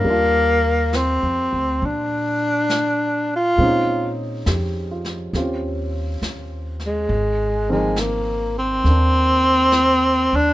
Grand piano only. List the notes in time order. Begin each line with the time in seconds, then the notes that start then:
0.05 G3 A#3 D4
0.10 F4
3.58 G#3 C4 C#4
3.63 D#4
4.48 G4
4.91 F4
5.36 C4 C#4 F4 G4
7.69 D#3 F3 A#3 C4
8.85 A#3 D4